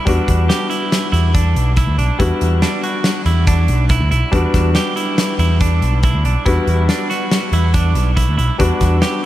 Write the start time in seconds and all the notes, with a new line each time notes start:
0.05 E2 G3 B3 D4 F#4, kick, closed hi-hat
0.28 E2, kick, closed hi-hat
0.49 G4, snare, closed hi-hat
0.70 E4, closed hi-hat
0.92 snare, closed hi-hat
1.12 E2 E4, closed hi-hat
1.34 D4, kick, closed hi-hat
1.56 B1, closed hi-hat
1.77 E4, kick, snare, closed hi-hat
1.87 D2
1.98 B1 D4, closed hi-hat
2.18 E2 G3 B3 D4 E4 F#4, kick, closed hi-hat
2.41 E2, closed hi-hat
2.62 D4, snare, closed hi-hat
2.83 F#4, closed hi-hat
3.04 snare, closed hi-hat
3.26 E2 E4, closed hi-hat
3.47 D4, kick, snare, closed hi-hat
3.68 B1, closed hi-hat
3.89 E4, kick, snare, closed hi-hat
4.01 D2
4.11 B1 E4, closed hi-hat
4.31 E2 G3 B3 D4 F#4, kick, closed hi-hat
4.54 E2, kick, snare, closed hi-hat
4.75 G4, snare, closed hi-hat
4.96 E4, closed hi-hat
5.18 snare, closed hi-hat
5.39 E2 E4, closed hi-hat
5.60 D4, kick, closed hi-hat
5.82 B1, closed hi-hat
6.03 E4, kick, closed hi-hat
6.14 D2
6.25 B1 D4, closed hi-hat
6.45 E2 G3 B3 D4 E4 F#4, kick, closed hi-hat
6.67 E2, closed hi-hat
6.89 D4, snare, closed hi-hat
7.10 F#4, snare, closed hi-hat
7.32 snare, closed hi-hat
7.53 E2 E4, closed hi-hat
7.74 D4, kick, snare, closed hi-hat
7.95 B1, closed hi-hat
8.17 E4, kick, closed hi-hat
8.28 D2
8.38 B1 E4, closed hi-hat
8.58 E2 G3 B3 D4 F#4, kick, closed hi-hat
8.81 E2, kick, snare, closed hi-hat
9.02 G4, snare, closed hi-hat